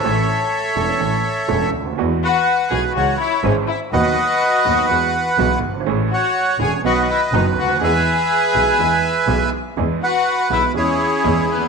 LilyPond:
<<
  \new Staff \with { instrumentName = "Bandoneon" } { \time 4/4 \key e \mixolydian \tempo 4 = 123 << { e''2.~ e''8 r8 | r8 fis''4 gis''8 fis''8 e''8 cis''8 e''8 | fis''2.~ fis''8 r8 | r8 fis''4 gis''8 fis''16. fis''32 e''8 dis''8 fis''8 |
gis''2.~ gis''8 r8 | r8 fis''4 e''8 cis''4. b'8 | } \\ { <a' cis''>2.~ <a' cis''>8 r8 | r8 b'4. cis''2 | <b' dis''>2.~ <b' dis''>8 r8 | r8 cis''4. <b' dis''>2 |
<b' e''>2.~ <b' e''>8 r8 | r8 b'4. <e' gis'>2 | } >> }
  \new Staff \with { instrumentName = "Violin section" } { \time 4/4 \key e \mixolydian r1 | r8 fis'4 gis'8 fis'8 e'8 cis'8 e'8 | fis'2.~ fis'8 r8 | r8 fis'4 gis'8 fis'16. fis'32 e'8 dis'8 fis'8 |
gis'2.~ gis'8 r8 | r8 fis'4 e'8 cis'4. b8 | }
  \new Staff \with { instrumentName = "Grand piano" } { \clef bass \time 4/4 \key e \mixolydian <a,, a, e a cis' a'>8 r4 <e,, e, e a cis' a'>8 <a,, a, e a cis' a'>8 r8 <e,, e, e a cis' a'>8 r32 cis,32 d,32 dis,32 | <e, e gis b fis'>8 r4 <b,, b, e gis b fis'>8 <cis, cis e gis cis' gis'>8 r8 <gis,, gis, e gis cis' gis'>8 r8 | <dis, dis fis b fis'>8 r4 <dis, dis fis b fis'>8 <e, e gis b fis'>8 r8 <b,, b, e gis b fis'>8 r32 fis,,32 g,,32 gis,,32 | <a,, a, e a cis' gis'>8 r4 <e,, e, e a cis' gis'>8 <b,, b, dis fis b fis'>8 r8 <fis,, fis, dis fis b fis'>8 r32 cis,32 d,32 dis,32 |
<e, e gis b gis'>8 r4 <b,, b, e gis b gis'>8 <e, e gis b gis'>8 r8 <b,, b, e gis b gis'>8 r8 | <e, e gis b gis'>8 r4 <b,, b, e gis b gis'>8 <e, e gis cis' gis'>8 r8 <e, e gis cis' gis'>8 r32 dis,32 e,32 r32 | }
  \new Staff \with { instrumentName = "Double bass" } { \clef bass \time 4/4 \key e \mixolydian a,,8 r4 e,,8 a,,8 r8 e,,8 d,8 | e,8 r4 b,,8 cis,8 r8 gis,,8 r8 | dis,8 r4 dis,8 e,8 r8 b,,8 g,,8 | a,,8 r4 e,,8 b,,8 r8 fis,,8 d,8 |
e,8 r4 b,,8 e,8 r8 b,,8 r8 | e,8 r4 b,,8 e,8 r8 e,8 r8 | }
>>